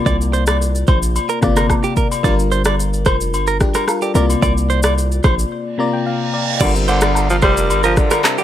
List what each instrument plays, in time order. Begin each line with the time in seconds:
Already playing: fm electric piano C3 A#3 F4 D5
0.06 808-style bass C2, clean electric guitar D5, kick, high agogo, shaker
0.21 shaker
0.33 clean electric guitar C5, shaker
0.47 clean electric guitar D5, cross-stick, high agogo, shaker
0.62 shaker
0.75 shaker
0.87 808-style bass A#1, clean electric guitar C5, kick, high agogo, shaker
1.03 shaker
1.16 high agogo, shaker
1.29 clean electric guitar A#4, shaker
1.41 808-style bass G1, fm electric piano C3 A#3 F4 D5, kick, cross-stick, shaker
1.56 clean electric guitar A#4, cross-stick, high agogo, shaker
1.70 kick, cross-stick, low woodblock, shaker
1.84 clean electric guitar G4, shaker
1.97 clean electric guitar A#4, kick, shaker
2.12 high agogo, shaker
2.23 808-style bass G1, fm electric piano G3 D4 F4 A#4, clean electric guitar D5, kick, high agogo, shaker
2.39 shaker
2.52 clean electric guitar C5, shaker
2.65 clean electric guitar D5, cross-stick, high agogo, shaker
2.80 shaker
2.93 shaker
3.05 808-style bass F1, clean electric guitar C5, kick, cross-stick, high agogo, shaker
3.21 shaker
3.33 808-style bass G1, high agogo, shaker
3.47 clean electric guitar A#4, shaker
3.60 fm electric piano D4 G4, kick, cross-stick, shaker
3.74 clean electric guitar A#4, cross-stick, high agogo, shaker
3.88 fm electric piano F4 A#4, cross-stick, low woodblock, shaker
4.02 clean electric guitar G4, fm electric piano A4 D5, shaker
4.14 808-style bass C2, fm electric piano C3 A#3 F4 D5, clean electric guitar A#4, shaker
4.30 high agogo, shaker
4.42 808-style bass C2, clean electric guitar D5, kick, high agogo, shaker
4.58 shaker
4.70 clean electric guitar C5, shaker
4.83 clean electric guitar D5, cross-stick, high agogo, shaker
4.98 shaker
5.12 shaker
5.23 808-style bass A#1, clean electric guitar C5, kick, cross-stick, high agogo, shaker
5.39 shaker
5.52 reverse cymbal
5.78 fm electric piano C3 A#3 F4 D5 A#5
5.93 fm electric piano G5
6.06 fm electric piano F5
6.34 fm electric piano D5
6.60 808-style bass G1, tenor saxophone D3, fm electric piano G3 D4 F4 A#4, pipe organ G3 F4 A#4, clean electric guitar D5, kick, crash, high agogo, shaker
6.75 tenor saxophone C3, shaker
6.88 tenor saxophone D3, clean electric guitar C5, shaker
7.01 clean electric guitar D5, cross-stick, high agogo, shaker
7.15 low woodblock, shaker
7.30 tenor saxophone F3, shaker
7.42 808-style bass F1, tenor saxophone G3, clean electric guitar C5, kick, cross-stick, high agogo, shaker
7.57 shaker
7.70 808-style bass G1, high agogo, shaker
7.83 tenor saxophone F3, clean electric guitar A#4, shaker
7.97 tenor saxophone D3, kick, cross-stick, shaker
8.11 clean electric guitar A#4, cross-stick, high agogo, shaker
8.24 tenor saxophone C3, cross-stick, clap, low woodblock, shaker
8.38 tenor saxophone D3, clean electric guitar G4, shaker